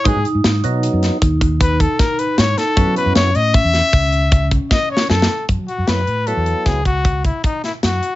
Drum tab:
HH |x--x--x--x--x--x--x--x--x--x--x--x--x--x--|x--x--x--x--x--x--x--x--x--x--------------|x--x--x--x--x--x--x--x--x--x--x--x--x--x--|
SD |------o--------o--------------o-----o--o--|------o--------o--------------o---o-o-o---|------o-----------o--------------o--o-----|
BD |o-----------------o--o--o--o--o-----------|o-----------o-----o-----o--o--o-----------|o-----------------o--o--o--o--o-----------|